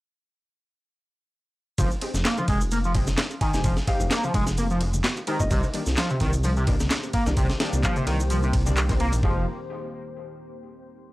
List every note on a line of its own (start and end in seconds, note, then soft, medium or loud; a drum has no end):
1.78 1.89 F1 loud
1.78 1.88 F3 loud
1.78 kick loud
1.78 ride medium
1.78 high conga loud
1.78 shaker medium
1.91 high bongo medium
1.91 shaker soft
2.01 2.08 G#3 medium
2.01 2.08 C4 medium
2.01 2.08 D#4 medium
2.01 2.08 G4 medium
2.01 ride medium
2.14 2.23 F1 loud
2.14 snare soft
2.14 shaker medium
2.25 2.37 A#3 medium
2.25 snare loud
2.25 clap loud
2.25 ride medium
2.25 shaker medium
2.38 2.46 F3 medium
2.38 ride soft
2.38 high bongo medium
2.38 high conga medium
2.38 shaker soft
2.48 3.15 F1 medium
2.48 2.58 G#3 loud
2.48 kick loud
2.48 ride medium
2.61 ride soft
2.61 shaker medium
2.71 2.77 A#3 medium
2.71 ride medium
2.71 high bongo medium
2.71 shaker medium
2.84 2.92 F3 medium
2.84 shaker soft
2.94 3.01 G#3 medium
2.94 3.01 C4 medium
2.94 3.01 D#4 medium
2.94 3.01 G4 medium
2.94 kick loud
2.94 ride medium
2.94 low conga medium
3.07 snare soft
3.07 high conga medium
3.07 shaker medium
3.18 snare loud
3.18 clap loud
3.18 ride medium
3.18 high bongo medium
3.18 shaker medium
3.30 ride soft
3.30 shaker soft
3.41 3.51 D#3 loud
3.41 3.50 G#5 medium
3.41 kick loud
3.41 ride medium
3.54 3.63 F1 loud
3.54 3.59 G#3 medium
3.54 3.59 C4 medium
3.54 3.59 D#4 medium
3.54 3.59 G4 medium
3.54 3.61 G#5 medium
3.54 snare soft
3.54 high bongo medium
3.54 shaker medium
3.64 3.75 F1 loud
3.64 3.74 F3 loud
3.64 kick loud
3.64 ride medium
3.64 high conga medium
3.64 shaker medium
3.77 snare medium
3.77 shaker soft
3.87 5.25 G#3 medium
3.87 5.25 C4 medium
3.87 5.25 D#4 medium
3.87 5.25 G4 loud
3.87 4.03 F5 medium
3.87 kick loud
3.87 ride medium
4.00 4.09 F1 loud
4.00 high bongo medium
4.00 shaker medium
4.11 4.23 A#3 medium
4.11 snare loud
4.11 clap loud
4.11 ride medium
4.11 shaker medium
4.24 4.32 F3 medium
4.24 high conga medium
4.24 shaker soft
4.34 5.01 F1 medium
4.34 4.44 G#3 loud
4.34 kick loud
4.34 ride medium
4.34 high bongo medium
4.47 snare medium
4.47 shaker medium
4.57 4.64 A#3 medium
4.57 ride medium
4.57 shaker medium
4.70 4.78 F3 medium
4.70 shaker soft
4.81 ride medium
4.81 high bongo medium
4.93 high conga loud
4.93 shaker medium
5.04 snare loud
5.04 clap loud
5.04 ride medium
5.04 shaker medium
5.16 ride soft
5.16 high bongo medium
5.16 shaker soft
5.27 5.37 D#3 loud
5.27 5.34 G#3 medium
5.27 5.34 C4 medium
5.27 5.34 D#4 medium
5.27 5.34 G4 medium
5.27 ride medium
5.39 5.49 F1 loud
5.39 5.47 D#5 medium
5.39 kick loud
5.39 low conga medium
5.39 shaker medium
5.51 5.62 C2 loud
5.51 5.60 C3 loud
5.51 9.19 D#3 medium
5.51 9.19 A#3 medium
5.51 9.20 G4 medium
5.51 9.19 C5 medium
5.51 5.59 D#5 medium
5.51 kick loud
5.51 ride medium
5.51 high conga medium
5.51 shaker medium
5.63 high bongo medium
5.63 shaker soft
5.74 5.80 D#3 medium
5.74 5.80 G3 medium
5.74 5.80 A#3 medium
5.74 5.80 D4 medium
5.74 ride medium
5.86 5.96 C2 loud
5.86 snare soft
5.86 shaker medium
5.96 6.09 F3 medium
5.96 snare loud
5.96 clap loud
5.96 ride medium
5.96 high bongo soft
5.96 shaker medium
6.10 6.18 C3 medium
6.10 ride soft
6.10 high conga medium
6.10 shaker soft
6.20 6.88 C2 loud
6.20 6.30 D#3 loud
6.20 kick loud
6.20 ride medium
6.33 ride soft
6.33 shaker medium
6.43 6.50 F3 medium
6.43 ride medium
6.43 high bongo medium
6.43 shaker medium
6.56 6.64 C3 medium
6.56 shaker soft
6.67 6.74 D#3 medium
6.67 6.74 G3 medium
6.67 6.74 A#3 medium
6.67 6.74 D4 medium
6.67 kick loud
6.67 ride medium
6.67 low conga medium
6.80 snare soft
6.80 high bongo soft
6.80 high conga loud
6.80 shaker medium
6.90 snare loud
6.90 clap loud
6.90 ride medium
6.90 shaker medium
7.03 ride soft
7.03 shaker soft
7.13 7.23 A#3 loud
7.13 kick loud
7.13 ride medium
7.26 7.35 C2 medium
7.26 7.32 D#3 medium
7.26 7.32 G3 medium
7.26 7.32 A#3 medium
7.26 7.32 D4 medium
7.26 snare soft
7.26 high bongo medium
7.26 shaker medium
7.37 7.48 C2 loud
7.37 7.46 C3 loud
7.37 kick loud
7.37 ride medium
7.37 high conga loud
7.37 shaker medium
7.50 snare medium
7.50 shaker soft
7.60 8.64 D#3 loud
7.60 8.64 G3 medium
7.60 8.64 A#3 medium
7.60 8.64 D4 loud
7.60 snare loud
7.60 ride medium
7.60 high bongo soft
7.73 7.82 C2 loud
7.73 ride soft
7.73 shaker medium
7.83 7.95 F3 medium
7.83 kick medium
7.83 clap loud
7.83 ride medium
7.83 shaker medium
7.96 8.04 C3 medium
7.96 ride soft
7.96 high conga medium
7.96 shaker soft
8.07 8.65 C2 loud
8.07 8.16 D#3 loud
8.07 ride medium
8.07 high bongo medium
8.20 shaker medium
8.30 8.36 F3 medium
8.30 ride medium
8.30 shaker medium
8.42 8.51 C3 medium
8.42 high bongo medium
8.42 shaker soft
8.53 kick loud
8.53 ride medium
8.66 8.97 C2 medium
8.66 8.86 D#3 medium
8.66 8.86 G3 medium
8.66 8.86 A#3 medium
8.66 8.86 D4 medium
8.66 high conga medium
8.66 shaker medium
8.77 clap loud
8.77 ride medium
8.77 shaker medium
8.89 8.95 D#3 medium
8.89 8.95 G3 medium
8.89 8.94 A#3 medium
8.89 8.95 C4 loud
8.89 kick loud
8.89 ride medium
8.89 high bongo medium
8.89 shaker soft
9.00 9.10 C2 medium
9.00 9.09 A#3 loud
9.00 ride medium
9.12 9.21 A#1 medium
9.12 ride medium
9.12 low conga medium
9.12 shaker medium
9.23 9.45 F1 loud
9.23 9.45 F3 medium
9.23 9.41 G#3 medium
9.23 9.41 C4 medium
9.23 9.41 D#4 medium
9.23 9.41 G4 medium
9.23 kick loud